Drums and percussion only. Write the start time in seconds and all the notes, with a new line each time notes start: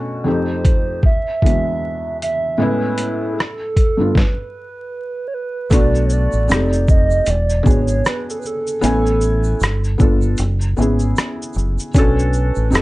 0.65 kick, closed hi-hat
1.03 kick
1.42 kick, closed hi-hat
2.22 closed hi-hat
2.98 closed hi-hat
3.40 cross-stick
3.77 kick, closed hi-hat
4.15 kick, snare
5.71 kick, closed hi-hat, shaker
5.95 shaker
6.10 shaker
6.11 shaker
6.32 shaker
6.49 closed hi-hat, shaker
6.51 cross-stick, shaker
6.73 shaker
6.88 kick, shaker
7.11 shaker
7.26 closed hi-hat, shaker
7.50 shaker
7.66 kick, shaker
7.70 shaker
7.88 shaker
8.05 cross-stick, closed hi-hat, shaker
8.30 shaker
8.42 shaker
8.46 shaker
8.67 shaker
8.83 closed hi-hat, shaker
9.06 shaker
9.21 shaker
9.23 shaker
9.44 shaker
9.60 closed hi-hat, shaker
9.63 cross-stick, shaker
9.84 shaker
10.00 kick, shaker
10.22 shaker
10.37 closed hi-hat, shaker
10.61 shaker
10.77 shaker
10.82 shaker
10.99 shaker
11.17 cross-stick, closed hi-hat, shaker
11.18 shaker
11.42 shaker
11.54 shaker
11.58 shaker
11.79 shaker
11.94 kick, closed hi-hat, shaker
11.96 shaker
12.19 shaker
12.33 shaker
12.55 shaker
12.72 closed hi-hat, shaker
12.75 cross-stick, shaker